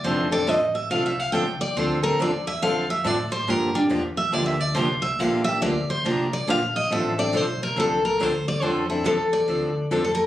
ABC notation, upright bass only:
X:1
M:4/4
L:1/8
Q:"Swing" 1/4=140
K:Dm
V:1 name="Upright bass" clef=bass
F,,,2 A,,,2 C,,2 ^C,, z | D,,2 E,,2 F,,2 A,,2 | G,,2 E,,2 D,,2 C,,2 | B,,,2 D,, z C,,2 B,,,2 |
A,,,2 =B,,,2 C,,2 D,,2 | F,,2 E,,2 D,,2 F,,2 |]